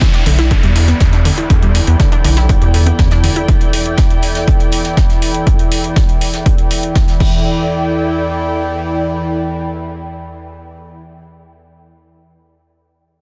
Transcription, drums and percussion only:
0.01 kick loud
0.01 snare loud
0.01 closed hi-hat medium
0.14 closed hi-hat soft
0.26 closed hi-hat medium
0.26 open hi-hat loud
0.39 snare soft
0.39 closed hi-hat soft
0.51 kick loud
0.51 closed hi-hat medium
0.63 closed hi-hat soft
0.76 closed hi-hat medium
0.76 open hi-hat loud
0.88 snare medium
0.88 closed hi-hat soft
1.00 kick loud
1.00 snare loud
1.00 closed hi-hat medium
1.13 snare soft
1.13 closed hi-hat soft
1.25 closed hi-hat medium
1.25 open hi-hat loud
1.37 closed hi-hat soft
1.50 kick loud
1.50 closed hi-hat medium
1.63 closed hi-hat soft
1.75 closed hi-hat medium
1.75 open hi-hat loud
1.87 closed hi-hat soft
2.00 kick loud
2.00 snare loud
2.00 closed hi-hat medium
2.12 closed hi-hat soft
2.24 closed hi-hat medium
2.24 open hi-hat loud
2.36 snare soft
2.36 closed hi-hat soft
2.49 kick loud
2.49 closed hi-hat medium
2.62 closed hi-hat soft
2.74 closed hi-hat medium
2.74 open hi-hat loud
2.87 closed hi-hat soft
2.99 kick loud
2.99 snare loud
2.99 closed hi-hat medium
3.11 snare soft
3.11 closed hi-hat soft
3.24 closed hi-hat medium
3.24 open hi-hat loud
3.36 closed hi-hat soft
3.48 kick loud
3.48 closed hi-hat medium
3.61 closed hi-hat soft
3.73 closed hi-hat medium
3.73 open hi-hat loud
3.86 closed hi-hat soft
3.97 kick loud
3.97 snare loud
3.97 closed hi-hat medium
4.10 closed hi-hat soft
4.22 closed hi-hat medium
4.22 open hi-hat loud
4.35 snare medium
4.35 closed hi-hat soft
4.48 kick loud
4.48 closed hi-hat medium
4.60 closed hi-hat soft
4.72 closed hi-hat medium
4.72 open hi-hat loud
4.85 snare medium
4.85 closed hi-hat soft
4.97 kick loud
4.97 snare loud
4.97 closed hi-hat medium
5.10 snare soft
5.10 closed hi-hat soft
5.22 closed hi-hat medium
5.22 open hi-hat loud
5.34 closed hi-hat soft
5.47 kick loud
5.47 closed hi-hat medium
5.59 closed hi-hat soft
5.72 closed hi-hat medium
5.72 open hi-hat loud
5.84 closed hi-hat soft
5.96 kick loud
5.96 snare loud
5.96 closed hi-hat medium
6.09 closed hi-hat soft
6.21 closed hi-hat medium
6.21 open hi-hat loud
6.34 snare soft
6.34 closed hi-hat soft
6.46 kick loud
6.46 closed hi-hat medium
6.58 closed hi-hat soft
6.71 closed hi-hat medium
6.71 open hi-hat loud
6.83 closed hi-hat soft
6.95 kick loud
6.95 snare loud
6.95 closed hi-hat medium
7.08 snare soft
7.08 closed hi-hat soft
7.20 kick loud
7.20 crash medium

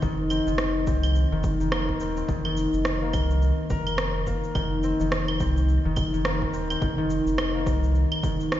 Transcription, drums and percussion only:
0.02 kick loud
0.02 shaker soft
0.30 claves medium
0.30 shaker medium
0.47 shaker soft
0.58 cross-stick medium
0.58 shaker soft
0.87 kick loud
0.87 shaker medium
1.03 claves medium
1.03 shaker soft
1.15 shaker soft
1.44 kick loud
1.44 shaker medium
1.61 shaker soft
1.72 cross-stick loud
1.72 claves medium
1.72 shaker soft
1.89 kick medium
2.00 shaker medium
2.17 shaker soft
2.29 kick loud
2.29 shaker soft
2.45 claves medium
2.57 shaker medium
2.74 shaker soft
2.85 cross-stick loud
2.85 shaker soft
3.13 kick loud
3.13 cross-stick soft
3.13 claves medium
3.13 shaker medium
3.30 shaker soft
3.42 shaker soft
3.70 kick loud
3.70 shaker medium
3.87 claves medium
3.87 shaker soft
3.98 cross-stick loud
3.98 shaker soft
4.27 kick medium
4.27 shaker medium
4.44 shaker soft
4.55 kick loud
4.55 claves medium
4.55 shaker soft
4.83 shaker medium
5.00 shaker soft
5.12 cross-stick loud
5.12 shaker soft
5.28 claves medium
5.40 kick medium
5.40 shaker medium
5.57 shaker soft
5.69 shaker soft
5.96 kick loud
5.96 claves medium
5.96 shaker medium
6.14 shaker soft
6.25 cross-stick loud
6.25 shaker soft
6.42 kick medium
6.54 shaker medium
6.70 claves medium
6.70 shaker soft
6.82 kick loud
6.82 shaker soft
7.10 shaker medium
7.27 shaker soft
7.38 cross-stick loud
7.38 claves medium
7.38 shaker soft
7.66 kick loud
7.66 cross-stick soft
7.66 shaker medium
7.83 shaker soft
7.95 shaker soft
8.12 claves medium
8.23 kick loud
8.23 shaker medium
8.40 shaker soft
8.52 cross-stick loud
8.52 shaker soft

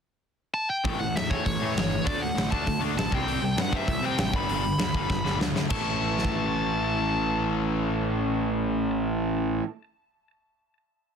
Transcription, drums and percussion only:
0.85 kick loud
0.85 open hi-hat medium
1.17 snare loud
1.17 open hi-hat medium
1.31 kick medium
1.46 kick medium
1.46 open hi-hat medium
1.77 snare loud
1.77 open hi-hat medium
2.07 kick loud
2.07 open hi-hat medium
2.38 snare loud
2.38 open hi-hat medium
2.52 kick medium
2.67 kick medium
2.67 open hi-hat medium
2.98 snare loud
2.98 open hi-hat medium
3.12 kick loud
3.28 open hi-hat medium
3.58 snare loud
3.58 open hi-hat medium
3.73 kick medium
3.88 kick medium
3.88 open hi-hat medium
4.18 snare loud
4.18 open hi-hat medium
4.34 kick medium
4.49 open hi-hat medium
4.79 snare loud
4.79 open hi-hat medium
4.94 kick medium
5.10 kick medium
5.10 snare medium
5.26 snare medium
5.41 snare medium
5.56 snare medium
5.70 kick loud
5.70 crash medium
6.18 snare medium
6.25 kick medium

